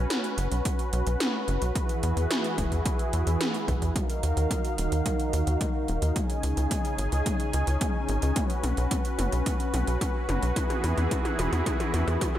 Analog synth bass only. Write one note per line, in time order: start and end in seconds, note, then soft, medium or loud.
0.38 0.48 F#1 loud
0.52 0.62 B1 medium
0.93 1.03 B1 medium
1.07 1.17 B1 medium
1.48 1.58 F#1 medium
1.62 1.72 B1 medium
2.03 2.13 E2 loud
2.17 2.27 E2 medium
2.58 2.68 E1 medium
2.72 2.82 E2 medium
3.13 3.23 E2 medium
3.27 3.37 E2 medium
3.68 3.78 B1 loud
3.82 3.92 E2 medium
4.23 4.33 D#2 medium
4.37 4.47 D#2 medium
4.78 4.88 D#1 medium
4.92 5.02 D#2 medium
5.33 5.43 D#2 medium
5.47 5.57 D#2 medium
5.88 5.99 D#1 medium
6.02 6.12 D#2 medium
6.43 6.54 C#2 medium
6.57 6.67 C#2 medium
6.98 7.09 G#1 medium
7.12 7.22 C#2 medium
7.54 7.64 C#2 medium
7.67 7.77 C#2 medium
8.09 8.19 G#1 medium
8.23 8.33 C#2 medium
8.64 8.74 B1 medium
8.77 8.88 B1 medium
9.19 9.29 F#1 medium
9.33 9.43 B1 medium
9.74 9.84 B1 loud
9.88 9.98 B1 medium
10.29 10.39 F#1 medium
10.43 10.53 B1 medium
10.84 10.94 E2 medium
10.98 11.08 E2 medium
11.39 11.49 E1 medium
11.53 11.63 E2 medium
11.94 12.04 E2 medium
12.08 12.18 E2 medium